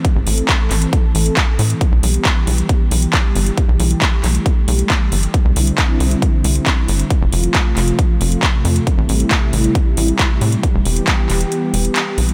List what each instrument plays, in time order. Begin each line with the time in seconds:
Already playing: analog synth pad E3 A3 C4
0.05 analog synth pad A4, kick, closed hi-hat
0.16 analog synth bass A1
0.27 analog synth bass A1, open hi-hat
0.38 closed hi-hat
0.49 kick, clap, closed hi-hat
0.71 analog synth bass A1, clap, open hi-hat
0.82 closed hi-hat
0.93 kick, closed hi-hat
1.15 analog synth bass A1, open hi-hat
1.26 closed hi-hat
1.37 kick, clap, closed hi-hat
1.59 analog synth bass A2, open hi-hat
1.70 closed hi-hat
1.81 analog synth pad G3 B3 G4, kick, closed hi-hat
1.92 analog synth bass B1
2.03 analog synth bass B1, open hi-hat
2.14 closed hi-hat
2.25 kick, clap, closed hi-hat
2.47 analog synth bass B1, open hi-hat
2.58 closed hi-hat
2.69 kick, closed hi-hat
2.91 analog synth bass B1, open hi-hat
3.02 closed hi-hat
3.13 kick, clap, closed hi-hat
3.35 analog synth bass G1, open hi-hat
3.46 closed hi-hat
3.57 analog synth pad A3, kick, closed hi-hat
3.69 analog synth bass B1
3.80 analog synth bass B1, open hi-hat
3.91 closed hi-hat
4.02 kick, clap, closed hi-hat
4.24 analog synth bass B1, clap, open hi-hat
4.35 closed hi-hat
4.46 kick, closed hi-hat
4.68 analog synth bass B1, open hi-hat
4.79 closed hi-hat
4.90 kick, clap, closed hi-hat
5.12 analog synth bass G1, open hi-hat
5.23 closed hi-hat
5.34 analog synth pad D3 C4 E4, kick, closed hi-hat
5.45 analog synth bass C2
5.56 analog synth bass C2, open hi-hat
5.67 closed hi-hat
5.78 kick, clap, closed hi-hat
6.00 analog synth bass C2, open hi-hat
6.11 closed hi-hat
6.22 kick, closed hi-hat
6.44 analog synth bass C2, open hi-hat
6.55 closed hi-hat
6.66 kick, clap, closed hi-hat
6.88 analog synth bass G1, open hi-hat
6.99 closed hi-hat
7.10 analog synth pad C3 F3 A3 F4, kick, closed hi-hat
7.21 analog synth bass F1
7.32 analog synth bass F1, open hi-hat
7.44 closed hi-hat
7.55 kick, clap, closed hi-hat
7.77 analog synth bass F1, clap, open hi-hat
7.88 closed hi-hat
7.99 kick, closed hi-hat
8.21 analog synth bass F1, open hi-hat
8.32 closed hi-hat
8.43 kick, clap, closed hi-hat
8.65 analog synth bass F2, open hi-hat
8.76 closed hi-hat
8.87 analog synth pad G3 E4, kick, closed hi-hat
8.98 analog synth bass A1
9.09 analog synth bass A1, open hi-hat
9.20 closed hi-hat
9.31 kick, clap, closed hi-hat
9.53 analog synth bass A1, open hi-hat
9.64 closed hi-hat
9.75 kick, closed hi-hat
9.97 analog synth bass A1, open hi-hat
10.08 closed hi-hat
10.19 kick, clap, closed hi-hat
10.41 analog synth bass A2, open hi-hat
10.52 closed hi-hat
10.63 analog synth pad E3 B3 G4, kick, closed hi-hat
10.74 analog synth bass E1
10.85 analog synth bass E1, open hi-hat
10.96 closed hi-hat
11.08 kick, clap, closed hi-hat
11.30 analog synth bass E1, clap, open hi-hat
11.41 closed hi-hat
11.52 closed hi-hat
11.74 analog synth bass E1, open hi-hat
11.85 closed hi-hat
11.96 clap, closed hi-hat
12.18 analog synth bass B1, open hi-hat
12.29 closed hi-hat